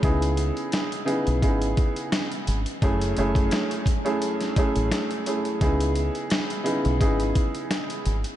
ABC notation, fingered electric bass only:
X:1
M:4/4
L:1/16
Q:"Swing 16ths" 1/4=86
K:C#m
V:1 name="Fingered electric bass" clef=bass
C,,3 z4 B,,, G,,,2 z4 G,,, z | F,,,2 F,,,2 z6 z A,,, z4 | C,,3 z4 B,,, G,,,2 z4 G,,, z |]